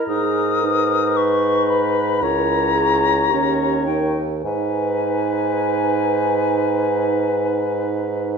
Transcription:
Already playing: clarinet E4, oboe A#4
0.08 bassoon G#2, clarinet D#4, french horn G#4, flute D#6
0.63 clarinet D#4, french horn B4
1.17 oboe B4, flute C#6
1.70 flute B5
2.22 bassoon C#2, clarinet E4, french horn A#4, oboe C#5, flute A#5
2.75 french horn G#4
3.29 bassoon D#2, clarinet C#4, french horn G4, oboe C#5
3.86 clarinet D#4, french horn A#4, flute G5
4.43 bassoon G#2, clarinet D#4, french horn B4, oboe B4, flute G#5

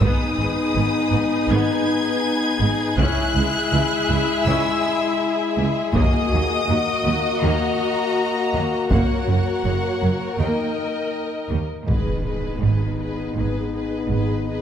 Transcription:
0.01 double bass section G#1, cello section G#2, french horn section B3 D#4, viola section B3 D#4, violin section G#4 B4 D#6, taiko
0.38 double bass section G#1, cello section G#2, viola section G#3
0.75 double bass section G#1, cello section G#2, viola section D#3
1.12 double bass section G#1, cello section G#2, viola section G#3
1.49 double bass section G#1, cello section G#2, viola section B3, violin section G#6
2.60 double bass section G#1, cello section G#2, viola section G#3
2.97 double bass section C#2, cello section C#2, french horn section G#3 E4, viola section C#4 E4, violin section E5 F#6, taiko
3.34 double bass section C#2, cello section C#2, viola section G#3
3.72 double bass section C#2, cello section C#2, viola section E3
4.09 cello section C#2, double bass section C#2, viola section G#3
4.44 cello section C#2, double bass section C#2, viola section C#4, violin section E6
5.57 cello section C#2, double bass section C#2, viola section G#3
5.94 cello section D#2, double bass section D#2, french horn section A#3 F#4, viola section A#3 F#4, violin section D#5 D#6, taiko
6.32 cello section D#2, double bass section D#2, viola section F#3
6.69 cello section D#2, double bass section D#2, viola section D#3, violin section F#4
7.05 cello section D#2, double bass section D#2, viola section F#3
7.42 cello section D#2, double bass section D#2, viola section A#3, violin section A#5
8.54 cello section D#2, double bass section D#2, viola section F#3
8.90 double bass section F#1, cello section F#2, viola section A#3, violin section A#4 C#5 F#5, taiko
9.27 double bass section F#1, cello section F#2, viola section F#3
9.64 double bass section F#1, cello section F#2, viola section C#3
10.02 double bass section F#1, cello section F#2, viola section F#3
10.38 cello section D#2, double bass section D#2, viola section A#3 A#4, french horn section D#4, violin section D#5 G5
11.50 cello section D#2, double bass section D#2, viola section G3
11.87 double bass section G#1, cello section G#2, timpani G#2, french horn section B3 D#4, viola section G#4, violin section B4 D#5, taiko, impact
12.24 viola section G#4, violin section B4 D#5
12.61 double bass section G#1, cello section G#2, viola section G#4, violin section B4 D#5
12.98 viola section G#4, violin section B4 D#5
13.35 double bass section G#1, cello section G#2, viola section G#4, violin section B4 D#5
13.72 viola section G#4, violin section B4 D#5
14.09 double bass section G#1, cello section G#2, viola section G#4, violin section B4 D#5
14.46 viola section G#4, violin section B4 D#5

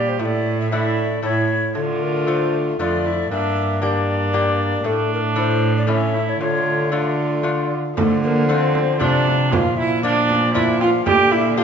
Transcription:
Already playing: lute A#2 D4 G4, cello A#2, bassoon G3, viola G4, recorder D5
0.09 recorder C5
0.19 lute A2, cello A2, bassoon A3, viola E4, recorder E5
0.25 recorder D5
0.61 recorder E5
0.71 bassoon A3, lute A3 D4 E4, viola E4, recorder D5
1.23 lute A2 A3 E4, cello A2, bassoon A3, viola E4, recorder C#5
1.75 lute D3, cello D3, bassoon A3, viola F4, recorder A4
2.02 recorder A#4
2.27 lute A3 D4 F4, recorder C5
2.79 lute F2 A3 D4 F4, cello F2, bassoon A3, viola F4, recorder D5
3.06 viola E4
3.30 lute G2, cello G2, bassoon A#3, viola D4, recorder E5
3.82 lute A#3 D4 G4, bassoon A#3, viola D4, recorder D5
4.33 lute A#3 D4 G4
4.84 lute A2, cello A2, bassoon A3, viola D4, recorder A4
5.14 recorder A#4
5.36 lute A3 D4 E4, recorder C5
5.77 recorder D5
5.87 lute A3 C#4 E4, bassoon A3, viola C#4, recorder E5
6.14 viola E4
6.29 recorder C#5
6.40 lute D3, cello D3, bassoon A3, viola F4, recorder C#5
6.92 lute A3 D4 F4, bassoon A3, viola F4, recorder D5
7.43 lute A3 D4 F4
7.97 lute D3, cello D3, bassoon F3, viola A3, recorder A4, frame drum
8.23 viola A#3, recorder A#4 C5
8.49 lute A3 D4 F4, viola C4, recorder C5
8.75 frame drum
9.00 lute C3 A3 D4 F4, cello C3, bassoon F3, viola D4, recorder D5, frame drum
9.27 frame drum
9.52 lute A#2, cello A#2, bassoon F3, viola F4, recorder G5, frame drum
9.56 recorder F5
9.77 viola E4, recorder E5
10.02 bassoon F3, lute A#3 D4 F4, viola D4, recorder D5
10.30 frame drum
10.54 lute A#3 D4 F4, viola E4, recorder E5, frame drum
10.80 viola F4, recorder F5 G5, frame drum
11.05 lute A#2, cello A#2, bassoon D3, viola G4, recorder G5, frame drum
11.32 viola E4, recorder E5
11.56 lute D4 G4, viola F4, recorder F5

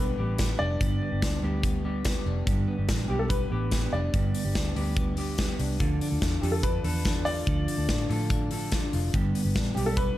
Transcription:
Already playing: fingered electric bass B1, clean electric guitar G2 G3 B3 D4 G4
0.00 clean electric guitar B3, upright piano B4
0.18 fingered electric bass A1, clean electric guitar G3 B3 D4 G4
0.38 clean electric guitar G3 B3 D4 G4, kick, snare, closed hi-hat
0.49 clean electric guitar G3 B3 D4 G4
0.59 fingered electric bass F1, clean electric guitar D4, upright piano D5
0.81 fingered electric bass G1, clean electric guitar G2 D3 G3 B3 D4 G4, kick, closed hi-hat
1.02 clean electric guitar B3
1.11 fingered electric bass G1, clean electric guitar G3 B3 D4 G4
1.22 fingered electric bass D2, clean electric guitar D4, kick, snare, closed hi-hat
1.42 fingered electric bass D2, clean electric guitar G3 B3 D4 G4
1.63 clean electric guitar B3, kick, closed hi-hat
1.84 clean electric guitar G3 B3 D4 G4
2.05 clean electric guitar G3 B3 D4 G4, kick, snare, closed hi-hat
2.15 clean electric guitar G3 B3 D4 G4
2.26 fingered electric bass F1, clean electric guitar D4
2.47 fingered electric bass G1, clean electric guitar G2 D3 G3 B3 D4 G4, kick, closed hi-hat
2.68 clean electric guitar B3
2.78 fingered electric bass G1, clean electric guitar G3 B3 D4 G4
2.89 fingered electric bass A1, clean electric guitar D4, kick, snare, closed hi-hat
3.08 fingered electric bass B1, clean electric guitar G3 B3 D4 G4, upright piano G4
3.19 upright piano A4
3.29 clean electric guitar B3, upright piano B4, kick, closed hi-hat
3.51 fingered electric bass A1, clean electric guitar G3 B3 D4 G4
3.71 clean electric guitar G3 B3 D4 G4, kick, snare, closed hi-hat
3.83 clean electric guitar G3 B3 D4 G4
3.93 fingered electric bass F1, clean electric guitar D4, upright piano D5
4.14 fingered electric bass G1, clean electric guitar G2 D3 G3 B3 D4 G4, kick, closed hi-hat
4.35 clean electric guitar B3, open hi-hat
4.45 fingered electric bass G1, clean electric guitar G3 B3 D4 G4
4.55 fingered electric bass D2, clean electric guitar D4, kick, snare, closed hi-hat
4.76 fingered electric bass D2, clean electric guitar G3 B3 D4 G4, open hi-hat
4.97 clean electric guitar B3, kick, closed hi-hat
5.17 clean electric guitar G3 B3 D4 G4, open hi-hat
5.38 clean electric guitar G3 B3 D4 G4, kick, snare, closed hi-hat
5.49 clean electric guitar G3 B3 D4 G4
5.59 fingered electric bass C2, clean electric guitar D4, open hi-hat
5.80 fingered electric bass D2, clean electric guitar D3 F3 D4 F4 A4, kick, closed hi-hat
6.01 clean electric guitar D4, open hi-hat
6.11 fingered electric bass D2, clean electric guitar D4 F4 A4
6.22 clean electric guitar F4, kick, snare, closed hi-hat
6.41 fingered electric bass F2, clean electric guitar F3 D4 F4 A4, upright piano G4, open hi-hat
6.52 upright piano A4
6.63 clean electric guitar D4, upright piano B4, kick, closed hi-hat
6.84 fingered electric bass E2, clean electric guitar F3 D4 F4 A4, open hi-hat
7.05 clean electric guitar F3 D4 F4 A4, kick, snare, closed hi-hat
7.15 clean electric guitar D4 F4 A4
7.25 clean electric guitar F4, upright piano D5, open hi-hat
7.47 fingered electric bass D2, clean electric guitar D3 F3 D4 F4 A4, kick, closed hi-hat
7.68 clean electric guitar D4, open hi-hat
7.78 fingered electric bass D2, clean electric guitar D4 F4 A4
7.89 fingered electric bass A2, clean electric guitar F4, kick, snare, closed hi-hat
8.09 fingered electric bass A2, clean electric guitar F3 D4 F4 A4, open hi-hat
8.30 clean electric guitar D4, kick, closed hi-hat
8.51 clean electric guitar F3 D4 F4 A4, open hi-hat
8.71 clean electric guitar F3 D4 F4 A4, kick, snare, closed hi-hat
8.82 clean electric guitar D4 F4 A4
8.93 fingered electric bass F1, clean electric guitar F4, open hi-hat
9.13 fingered electric bass G1, clean electric guitar G2 D3 G3 B3 D4 G4, kick, closed hi-hat
9.35 clean electric guitar B3, open hi-hat
9.44 fingered electric bass G1, clean electric guitar G3 B3 D4 G4
9.56 fingered electric bass A1, clean electric guitar D4, kick, snare, closed hi-hat
9.75 fingered electric bass B1, clean electric guitar G3 B3 D4 G4, upright piano G4, open hi-hat
9.86 upright piano A4
9.97 clean electric guitar B3, upright piano B4, kick, closed hi-hat

